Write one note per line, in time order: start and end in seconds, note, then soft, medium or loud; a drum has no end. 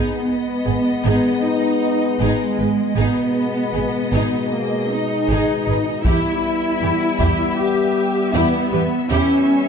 0.00 2.93 G#3 soft
0.00 1.40 B3 medium
0.00 2.94 B3 soft
0.00 0.25 D#4 soft
0.00 0.25 G#4 soft
0.00 2.93 D#5 soft
0.65 0.74 G#1 soft
0.65 0.73 G#4 soft
0.65 0.74 G#4 soft
1.04 1.13 G#1 soft
1.04 1.41 D#4 soft
1.04 1.40 G#4 soft
1.43 2.20 D#4 medium
2.20 2.28 G#1 soft
2.20 2.95 G#3 medium
2.20 2.56 D#4 soft
2.20 2.56 G#4 medium
2.58 2.67 G#1 soft
2.58 2.66 G#4 soft
2.58 2.66 B4 soft
2.96 3.05 G#1 soft
2.96 6.03 B2 soft
2.96 6.02 G#3 soft
2.96 4.51 B3 medium
2.96 3.33 D#4 soft
2.96 3.32 G#4 soft
2.96 6.02 D#5 soft
3.74 3.82 G#1 soft
3.74 3.82 G#4 soft
4.12 4.20 G#1 medium
4.12 4.49 D#4 soft
4.12 4.48 G#4 medium
4.51 4.90 A#3 medium
4.90 6.05 D#4 medium
5.29 5.37 G#1 medium
5.29 5.65 D#4 soft
5.29 5.65 G#4 medium
5.67 5.76 G#1 soft
5.67 5.76 G#4 soft
5.67 5.75 B4 soft
6.05 6.13 E2 soft
6.05 8.94 G3 medium
6.05 8.94 B3 medium
6.05 6.41 E4 soft
6.05 7.55 E4 medium
6.05 6.41 G4 medium
6.05 9.06 E5 soft
6.05 taiko medium
6.82 6.90 E2 soft
6.82 6.90 G4 soft
6.82 6.91 G4 soft
7.19 7.28 E2 medium
7.19 7.55 E4 medium
7.19 7.55 G4 soft
7.19 taiko soft
7.59 8.35 G4 medium
8.34 8.42 E2 medium
8.34 9.11 B3 medium
8.34 8.70 E4 medium
8.34 8.70 G4 medium
8.72 8.81 E2 soft
8.72 8.80 G4 soft
8.72 8.81 B4 soft
9.10 9.19 E2 medium
9.10 9.68 G3 medium
9.10 9.68 B3 medium
9.10 9.68 C#4 medium
9.10 9.46 E4 soft
9.10 9.46 G4 medium
9.10 9.68 E5 medium